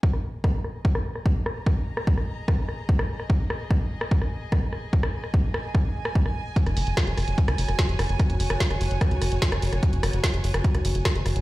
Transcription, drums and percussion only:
0.03 kick loud
0.13 cross-stick soft
0.44 kick loud
0.44 cross-stick medium
0.64 cross-stick soft
0.85 kick loud
0.95 cross-stick medium
1.15 cross-stick soft
1.26 kick loud
1.46 cross-stick medium
1.66 kick loud
1.66 cross-stick soft
1.97 cross-stick medium
2.07 kick loud
2.17 cross-stick soft
2.48 kick loud
2.48 cross-stick medium
2.69 cross-stick soft
2.89 kick loud
2.99 cross-stick medium
3.20 cross-stick soft
3.30 kick loud
3.50 cross-stick medium
3.71 kick loud
3.71 cross-stick soft
4.01 cross-stick medium
4.11 kick loud
4.22 cross-stick soft
4.52 kick loud
4.52 cross-stick medium
4.73 cross-stick soft
4.93 kick loud
5.03 cross-stick medium
5.24 cross-stick soft
5.34 kick loud
5.54 cross-stick medium
5.75 kick loud
5.75 cross-stick soft
6.05 cross-stick medium
6.15 kick loud
6.26 cross-stick soft
6.56 kick loud
6.56 closed hi-hat medium
6.66 cross-stick soft
6.66 closed hi-hat medium
6.77 open hi-hat loud
6.87 closed hi-hat medium
6.97 kick loud
6.97 cross-stick medium
6.97 snare loud
6.97 closed hi-hat medium
7.07 closed hi-hat medium
7.17 cross-stick soft
7.17 open hi-hat medium
7.28 closed hi-hat medium
7.38 kick loud
7.38 closed hi-hat medium
7.48 cross-stick medium
7.48 closed hi-hat medium
7.58 open hi-hat loud
7.68 cross-stick soft
7.68 closed hi-hat medium
7.79 kick loud
7.79 snare loud
7.79 closed hi-hat medium
7.89 closed hi-hat soft
7.99 cross-stick medium
7.99 open hi-hat medium
8.09 closed hi-hat soft
8.20 kick loud
8.20 cross-stick soft
8.20 closed hi-hat medium
8.30 closed hi-hat soft
8.40 open hi-hat loud
8.50 cross-stick medium
8.50 closed hi-hat medium
8.60 kick loud
8.60 snare loud
8.60 closed hi-hat medium
8.71 cross-stick soft
8.71 closed hi-hat medium
8.81 open hi-hat medium
8.91 closed hi-hat soft
9.01 kick loud
9.01 cross-stick medium
9.01 closed hi-hat medium
9.11 closed hi-hat soft
9.22 cross-stick soft
9.22 open hi-hat loud
9.32 closed hi-hat medium
9.42 kick loud
9.42 snare loud
9.42 closed hi-hat medium
9.52 cross-stick medium
9.52 closed hi-hat medium
9.62 open hi-hat medium
9.73 cross-stick soft
9.73 closed hi-hat soft
9.83 kick loud
9.83 closed hi-hat medium
9.93 closed hi-hat medium
10.03 cross-stick medium
10.03 open hi-hat medium
10.13 closed hi-hat medium
10.24 kick loud
10.24 cross-stick soft
10.24 snare loud
10.24 closed hi-hat medium
10.34 closed hi-hat medium
10.44 open hi-hat medium
10.54 cross-stick medium
10.54 closed hi-hat medium
10.64 kick loud
10.64 closed hi-hat medium
10.75 cross-stick soft
10.75 closed hi-hat medium
10.85 open hi-hat loud
10.95 closed hi-hat medium
11.05 kick loud
11.05 cross-stick medium
11.05 snare loud
11.05 closed hi-hat medium
11.15 closed hi-hat medium
11.26 cross-stick soft
11.26 open hi-hat medium
11.36 closed hi-hat medium

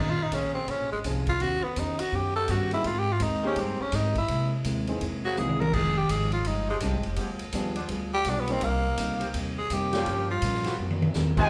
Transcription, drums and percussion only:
0.32 kick soft
0.32 hi-hat pedal medium
0.32 ride medium
0.68 kick soft
0.68 ride medium
1.04 kick soft
1.04 hi-hat pedal medium
1.04 ride medium
1.27 kick medium
1.27 ride soft
1.40 kick soft
1.40 ride medium
1.76 kick soft
1.76 hi-hat pedal medium
1.76 ride medium
1.99 ride medium
2.13 kick soft
2.48 kick soft
2.48 hi-hat pedal medium
2.48 ride medium
2.71 ride soft
2.84 kick soft
2.84 ride medium
3.20 kick soft
3.20 hi-hat pedal medium
3.20 ride medium
3.56 kick soft
3.56 ride medium
3.92 kick soft
3.92 snare soft
3.92 hi-hat pedal medium
3.92 ride medium
4.15 kick medium
4.15 ride medium
4.28 kick soft
4.28 ride medium
4.64 kick soft
4.64 hi-hat pedal medium
4.64 ride medium
4.87 ride soft
5.01 kick soft
5.01 ride medium
5.37 hi-hat pedal medium
5.37 high tom soft
5.49 high tom medium
5.61 high tom medium
5.73 kick medium
5.73 crash medium
6.09 kick soft
6.09 hi-hat pedal medium
6.09 ride medium
6.32 ride soft
6.45 kick soft
6.45 ride medium
6.80 kick soft
6.80 hi-hat pedal medium
6.80 ride medium
7.03 ride medium
7.16 kick soft
7.16 ride medium
7.39 ride medium
7.53 kick soft
7.53 hi-hat pedal medium
7.53 ride medium
7.76 ride medium
7.89 kick soft
7.89 ride medium
8.25 kick soft
8.25 hi-hat pedal medium
8.25 ride medium
8.47 ride medium
8.61 kick soft
8.61 ride medium
8.97 kick soft
8.97 hi-hat pedal medium
8.97 ride medium
9.21 ride medium
9.34 kick soft
9.34 ride medium
9.70 kick soft
9.70 hi-hat pedal medium
9.70 ride medium
9.93 snare medium
9.93 ride medium
10.06 kick soft
10.06 ride medium
10.42 kick soft
10.42 hi-hat pedal medium
10.42 ride medium
10.54 snare soft
10.64 snare soft
10.64 ride medium
10.90 high tom medium
11.02 high tom medium
11.14 snare medium
11.14 hi-hat pedal medium
11.37 kick medium
11.37 crash medium

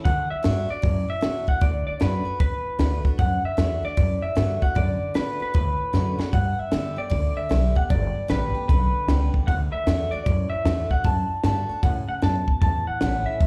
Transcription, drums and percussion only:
0.05 kick loud
0.05 open hi-hat medium
0.44 snare loud
0.44 open hi-hat medium
0.83 kick loud
0.83 open hi-hat medium
1.23 snare loud
1.23 open hi-hat soft
1.48 kick medium
1.61 kick loud
1.61 open hi-hat medium
2.01 snare loud
2.01 open hi-hat medium
2.40 kick loud
2.40 open hi-hat soft
2.79 snare loud
2.79 open hi-hat medium
3.05 kick medium
3.19 kick loud
3.19 open hi-hat medium
3.58 snare loud
3.58 open hi-hat soft
3.97 kick loud
3.97 open hi-hat medium
4.37 snare loud
4.37 open hi-hat medium
4.62 kick medium
4.76 kick loud
4.76 open hi-hat medium
5.15 snare loud
5.15 open hi-hat medium
5.55 kick loud
5.55 open hi-hat medium
5.94 snare medium
6.20 snare medium
6.33 kick loud
6.33 open hi-hat medium
6.72 snare loud
6.72 open hi-hat medium
7.11 kick loud
7.11 open hi-hat medium
7.51 snare loud
7.51 open hi-hat medium
7.76 kick medium
7.90 kick loud
7.90 open hi-hat medium
8.30 snare loud
8.30 open hi-hat medium
8.69 kick loud
8.69 open hi-hat medium
9.08 snare loud
9.08 open hi-hat medium
9.34 kick medium
9.48 kick loud
9.48 open hi-hat soft
9.87 snare loud
9.87 open hi-hat medium
10.26 kick loud
10.26 open hi-hat medium
10.65 snare loud
10.65 open hi-hat medium
10.91 kick medium
11.05 kick loud
11.05 open hi-hat medium
11.44 snare loud
11.44 open hi-hat medium
11.83 kick loud
11.83 open hi-hat soft
12.22 snare loud
12.22 open hi-hat medium
12.48 kick medium
12.62 kick loud
12.62 open hi-hat medium
13.01 snare loud
13.01 open hi-hat medium
13.40 kick loud
13.40 open hi-hat soft

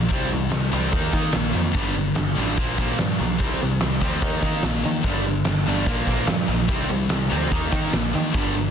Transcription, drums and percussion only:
0.10 kick loud
0.10 open hi-hat medium
0.51 snare loud
0.51 open hi-hat medium
0.93 kick loud
0.93 open hi-hat medium
1.13 kick medium
1.23 snare soft
1.33 snare loud
1.33 open hi-hat medium
1.74 kick loud
1.74 open hi-hat medium
2.16 snare loud
2.16 open hi-hat medium
2.58 kick loud
2.58 open hi-hat medium
2.78 kick loud
2.98 snare loud
2.98 open hi-hat medium
3.40 kick loud
3.40 open hi-hat medium
3.80 snare loud
3.80 open hi-hat medium
4.01 kick medium
4.21 kick loud
4.21 open hi-hat medium
4.43 kick medium
4.53 snare soft
4.63 snare loud
4.63 open hi-hat medium
5.03 kick loud
5.03 open hi-hat medium
5.45 snare loud
5.45 open hi-hat medium
5.86 kick loud
5.86 open hi-hat soft
6.07 kick medium
6.27 snare loud
6.27 open hi-hat medium
6.68 kick loud
6.68 open hi-hat medium
7.10 snare loud
7.10 open hi-hat medium
7.51 kick loud
7.51 open hi-hat medium
7.72 kick medium
7.84 snare soft
7.93 snare loud
7.93 open hi-hat medium
8.34 kick loud
8.34 open hi-hat medium

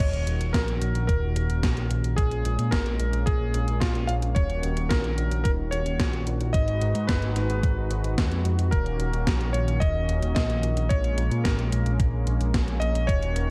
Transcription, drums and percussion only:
0.00 kick loud
0.00 closed hi-hat medium
0.00 crash medium
0.13 closed hi-hat soft
0.27 closed hi-hat medium
0.41 closed hi-hat medium
0.54 kick loud
0.54 snare loud
0.54 closed hi-hat medium
0.68 closed hi-hat soft
0.82 closed hi-hat medium
0.95 closed hi-hat medium
1.09 kick loud
1.09 closed hi-hat medium
1.36 closed hi-hat medium
1.50 closed hi-hat soft
1.63 kick loud
1.63 snare loud
1.63 closed hi-hat medium
1.77 closed hi-hat soft
1.91 closed hi-hat medium
2.04 closed hi-hat soft
2.18 kick loud
2.18 closed hi-hat medium
2.31 closed hi-hat soft
2.45 closed hi-hat medium
2.59 closed hi-hat medium
2.72 kick loud
2.72 snare loud
2.72 closed hi-hat medium
2.86 closed hi-hat soft
3.00 closed hi-hat medium
3.13 closed hi-hat medium
3.27 kick loud
3.27 closed hi-hat medium
3.54 closed hi-hat medium
3.68 closed hi-hat soft
3.82 kick loud
3.82 snare loud
3.82 closed hi-hat medium
3.95 closed hi-hat soft
4.09 closed hi-hat medium
4.22 closed hi-hat medium
4.36 kick loud
4.36 closed hi-hat medium
4.50 closed hi-hat soft
4.63 closed hi-hat medium
4.77 closed hi-hat medium
4.91 kick loud
4.91 snare loud
4.91 closed hi-hat medium
5.04 closed hi-hat soft
5.18 closed hi-hat medium
5.31 closed hi-hat medium
5.45 kick loud
5.45 closed hi-hat medium
5.72 closed hi-hat medium
5.86 closed hi-hat medium
6.00 kick loud
6.00 snare loud
6.00 closed hi-hat medium
6.13 closed hi-hat soft
6.27 closed hi-hat medium
6.41 closed hi-hat soft
6.54 kick loud
6.54 closed hi-hat medium
6.68 closed hi-hat soft
6.81 closed hi-hat medium
6.95 closed hi-hat soft
7.09 kick loud
7.09 snare loud
7.09 closed hi-hat medium
7.22 closed hi-hat soft
7.36 snare soft
7.36 closed hi-hat medium
7.50 closed hi-hat medium
7.63 kick loud
7.63 closed hi-hat medium
7.91 closed hi-hat medium
8.04 closed hi-hat soft
8.18 kick loud
8.18 snare loud
8.18 closed hi-hat medium
8.32 closed hi-hat soft
8.45 closed hi-hat medium
8.59 closed hi-hat soft
8.72 kick loud
8.72 closed hi-hat medium
8.86 closed hi-hat soft
9.00 closed hi-hat medium
9.13 closed hi-hat soft
9.27 kick loud
9.27 snare loud
9.27 closed hi-hat medium
9.41 closed hi-hat soft
9.54 closed hi-hat medium
9.68 closed hi-hat soft
9.81 kick loud
9.81 closed hi-hat medium
10.09 closed hi-hat medium
10.22 closed hi-hat soft
10.36 kick loud
10.36 snare loud
10.36 closed hi-hat medium
10.50 closed hi-hat soft
10.63 closed hi-hat medium
10.77 closed hi-hat soft
10.90 kick loud
10.90 closed hi-hat medium
11.04 closed hi-hat soft
11.18 closed hi-hat medium
11.31 closed hi-hat soft
11.45 kick loud
11.45 snare loud
11.45 closed hi-hat medium
11.59 closed hi-hat soft
11.72 closed hi-hat medium
11.86 closed hi-hat soft
12.00 kick loud
12.00 closed hi-hat medium
12.27 closed hi-hat medium
12.41 closed hi-hat soft
12.54 kick loud
12.54 snare loud
12.54 closed hi-hat medium
12.68 closed hi-hat soft
12.82 closed hi-hat medium
12.95 closed hi-hat soft
13.09 kick loud
13.09 closed hi-hat medium
13.23 closed hi-hat soft
13.36 closed hi-hat medium

